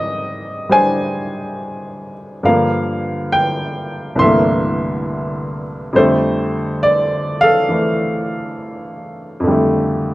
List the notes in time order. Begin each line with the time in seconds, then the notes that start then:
Already playing: G#2 D#3 G3 C4 G4 D5 D#5
0.69 G3 D4 C5 G#5
2.43 G2 D3 F3 A#4 F5
2.48 A#3
3.32 G5
4.16 C2 G2 C6
4.20 D3 E3 E5
4.24 A3 A#3
5.93 F2 D3 G3 C5
5.97 A3 A4
6.83 D5
7.41 A4 F5
7.69 E3 A3
9.40 F2 D3
9.47 G3 A3